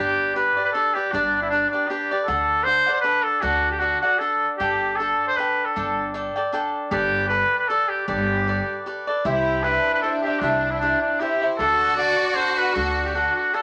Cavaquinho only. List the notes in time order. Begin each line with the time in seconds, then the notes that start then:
Already playing: D4
0.00 G4 B4 D5
0.35 D4 G4 B4 D5
0.57 G4 B4 D5
0.74 D4 G4 B4 D5
0.95 G4 B4 D5
1.14 D4 G4 B4 D5
1.52 D4 G4 B4 D5
1.73 G4 B4 D5
1.90 D4 G4 B4 D5
2.11 G4 B4 D5
2.28 D4 A4 D5 F#5
2.66 D4 A4 D5 F#5
2.86 A4 D5 F#5
3.04 D4 A4 D5 F#5
3.42 D4 A4 D5 F#5
3.80 D4 A4 D5 F#5
4.03 A4 D5 F#5
4.21 D4 A4 D5 F#5
4.60 D4 A4 D5 G5
5.00 D4 A4 D5 G5
5.38 D4 A4 D5 G5
5.76 D4 A4 D5 G5
6.14 D4 A4 D5 G5
6.36 A4 D5 G5
6.53 D4 A4 D5 G5
6.91 G4 A4 B4 D5
7.30 G4 A4 B4 D5
7.70 G4 A4 B4 D5
8.08 G4 A4 B4 D5
8.47 G4 A4 B4 D5
8.86 G4 A4 B4 D5
9.07 A4 B4 D5
9.25 E4 G4 C5 E5
9.64 E4 G4 C5 E5
10.03 E4 G4 C5 E5
10.26 G4 C5 E5
10.42 E4 G4 C5 E5
10.81 E4 G4 C5 E5
11.20 E4 G4 C5 E5
11.42 G4 C5 E5
11.60 D4 A4 D5 F#5
11.97 D4 A4 D5 F#5
12.36 D4 A4 D5 F#5
12.75 D4 A4 D5 F#5
13.15 D4 A4 D5 F#5
13.53 D4 A4 D5 F#5